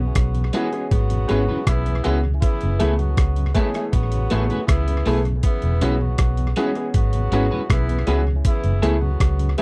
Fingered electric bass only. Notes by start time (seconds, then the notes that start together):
Already playing: B1
0.16 B1
0.92 G#1
1.31 G#1
1.67 B1
2.06 C#2
2.63 F#1
2.82 C#2
3.18 C#2
3.94 A1
4.33 A1
4.69 C#2
5.07 B1
5.63 E1
5.82 B1
6.19 B1
6.95 G#1
7.32 G#1
7.71 B1
8.07 C#2
8.64 F#1
8.83 C#2
9.21 C#2